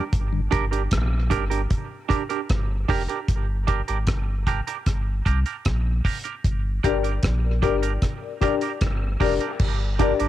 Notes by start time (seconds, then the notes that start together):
0.13 G1, kick, closed hi-hat
0.33 G2 D3
0.51 G1 D4 G4 A#4, kick, closed hi-hat
0.71 D4 G4 A#4, closed hi-hat
0.91 A#1, kick, cross-stick, closed hi-hat
1.30 G1 D4 G4 A#4, kick, closed hi-hat
1.50 D4 G4 A#4, closed hi-hat
1.70 kick, closed hi-hat
2.09 D4 G4 A#4, kick, closed hi-hat
2.29 D4 G4 A#4, closed hi-hat
2.49 G1, kick, cross-stick, closed hi-hat
2.88 F1 D4 G4 A#4, kick, open hi-hat
3.08 D4 G4 A#4, closed hi-hat
3.28 G1, kick, closed hi-hat
3.67 D4 G4 A#4, kick, closed hi-hat
3.88 G#1 D4 G4 A#4, closed hi-hat
4.07 G1, kick, cross-stick, closed hi-hat
4.47 D4 G4 A#4, kick, closed hi-hat
4.67 D4 G4 A#4, closed hi-hat
4.86 G1, kick, cross-stick, closed hi-hat
5.25 C2 D4 G4 A#4, kick, closed hi-hat
5.46 D4 G4 A#4, closed hi-hat
5.65 A#1, kick, cross-stick, closed hi-hat
6.05 D4 G4 A#4, kick, open hi-hat
6.24 D4 G4 A#4, closed hi-hat
6.44 G1, kick, closed hi-hat
6.83 G1 D4 G4 A#4 D5, kick, closed hi-hat
7.03 D4 G4 A#4, closed hi-hat
7.23 A#1, kick, cross-stick, closed hi-hat
7.44 A#4 D5
7.62 G1 D4 G4 A#4 D5, kick, closed hi-hat
7.82 D4 G4 A#4, closed hi-hat
8.02 kick, cross-stick, closed hi-hat
8.22 A#4 D5
8.41 D4 G4 A#4 D5, kick, closed hi-hat
8.61 D4 G4 A#4, closed hi-hat
8.81 G1, kick, cross-stick, closed hi-hat
9.20 F1 D4 G4 A#4 D5, kick, open hi-hat
9.40 D4 G4 A#4, closed hi-hat
9.59 G1, kick, crash
9.99 D4 G4 A#4 D5, kick, closed hi-hat
10.19 G#1 D4 G4 A#4, closed hi-hat